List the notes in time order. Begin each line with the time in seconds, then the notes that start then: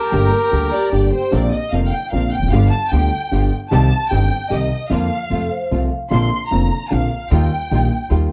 Already playing: G4 A#4
0.11 G1 G2 D3 G3 A#3 D4 G4 A#5
0.32 A#4
0.51 D2 D3 G3 A#3 D4 G4 A4
0.71 G4 D5
0.92 G1 G2 D3 G3 A#3 D4 G4 G5
1.13 C5
1.31 A#1 A#2 D3 A#3 C4 D4 F4 A#4 D5
1.53 D#5
1.72 F1 F2 D3 A#3 C4 D4 F4 A#4 F5
1.91 G5
2.12 A#1 A#2 D3 A#3 C4 D4 F4 A#4 F5
2.33 G5
2.37 E1 E2
2.43 F1 F2
2.48 F#1 F#2 D3 F5
2.52 G1 G2 G3 B3 F4 G4
2.71 A5
2.90 D2 D3 G3 B3 F4 G4 G5
3.31 G1 G2 D3 G3 B3 F4 G4
3.71 C2 C3 D#3 G3 C4 D#4 G4 A5
4.10 G1 G2 D#3 G3 C4 D#4 G4 G5
4.50 C2 C3 D#3 G3 C4 D#4 G4 D#5
4.90 F2 D3 F3 A#3 D4 F4 F5
5.30 F2 C3 F3 A3 C4 F4 A4
5.51 C5
5.71 C2 C3 F3 A3 C4 F4 F5
6.10 A#1 A#2 D3 A#3 C4 D4 F4 C6
6.51 F1 F2 D3 A#3 C4 D4 F4 A#5
6.90 A#1 A#2 D3 A#3 C4 D4 F4 F5
7.31 D#2 D#3 G3 A#3 D#4 F4 G5
7.71 A#1 A#2 D#3 G3 A#3 D#4 F4
8.10 D#2 D#3 G3 A#3 D#4 F4